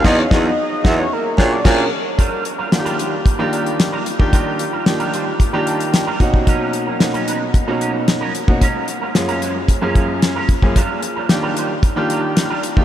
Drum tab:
CC |x-----------x---|----------------|----------------|----------------|
HH |----------------|x-x-xxx-x-xxx-x-|x-x-xxx-x-xxx-x-|x-x-xxx-x-x-x-x-|
SD |o-o---o---o-o---|----o-------o---|----o-------o---|----o-------o---|
BD |o-o---o---o-o---|o-------o------o|o-------o-----oo|o-------o------o|

CC |----------------|----------------|
HH |x-x-xxx-x-x-x-x-|x-x-x-x-x-x-x-x-|
SD |----o-------o---|----o-------o---|
BD |o-------o-o---oo|o-------o------o|